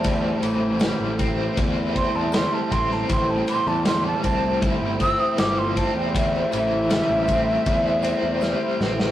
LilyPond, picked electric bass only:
\new Staff \with { instrumentName = "Picked electric bass" } { \clef bass \time 4/4 \key a \minor \tempo 4 = 79 e,8 a,,8. a,,8. e,8. e,8 r16 a,,8 | a,,8 r16 e,8. c,8. g,,8 r16 g,,8. e,16~ | e,8 a,,8. a,,8. e,8. e,8 r16 a,,8 | }